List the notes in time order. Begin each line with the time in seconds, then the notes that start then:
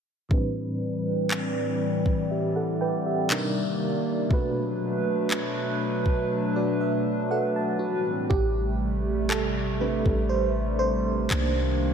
0.29 A2 E3 G3 C4 D4 B4 D5, kick
0.33 B4
1.31 clap
2.06 kick
2.31 G4 E5
2.56 A4 F#5
2.81 B4 G5
3.06 G4 E5
3.30 C3 D#3 G3 A#3 D4 D#4 A#4, clap
4.29 B2 F#3 A3 C4 D4 F#4 B4, kick
4.33 B4
4.37 D4
5.31 clap
6.06 kick
6.56 F#4 D5
6.81 E5
7.31 A4 F#5
7.56 A5
7.79 A2 E3 G3 C4 F#4 B4
8.30 A1 C3 G3 A3 G4, kick
9.29 A4, clap
9.80 G3 C4 D4 B4
10.06 A1, kick
10.29 C5
10.79 C5
11.30 C2 D#3 A#3 D4, clap